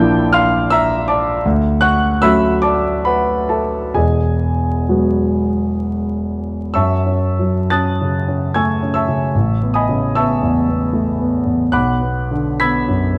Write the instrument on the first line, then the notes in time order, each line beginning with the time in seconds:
grand piano
Already playing: A#1 F3 A#3 E4 G5 A5 D6 E6 G6 A6
0.00 D4
0.33 F5 C6 F6
0.70 E5 A#5 E6
1.08 D5 A5 D6
1.45 D2
1.81 F#5 C#6 F#6
2.22 F#3 A3 C#4 F#4 E5 B5 E6
2.62 D5 A5 D6
3.05 B4 F#5 B5
3.49 A4 E5 A5
3.94 E1 E2 G#4 D#5 G#5
4.89 F#3 G#3 B3 F#4
6.74 F#2 E5 A5 C#6 E6
7.06 C#4
7.39 F#3
7.70 C#4 A5 D#6 F#6 A6
8.01 C#3
8.28 C#4
8.54 A3 G#5 C#6 E6 G#6
8.82 C#4
8.94 E5 A5 C#6 E6
9.08 C#3
9.35 A1
9.61 B3
9.74 D#5 G#5 B5 D#6
9.89 C#3
10.15 B3 E5 A5 C#6 E6
10.42 E2
10.68 B3
10.93 A3
11.19 B3
11.45 E2
11.72 B1 F#5 B5 D6 F#6
12.00 B3
12.31 D3
12.60 B3 B5 E6 G#6 B6
12.88 F#2
13.15 B3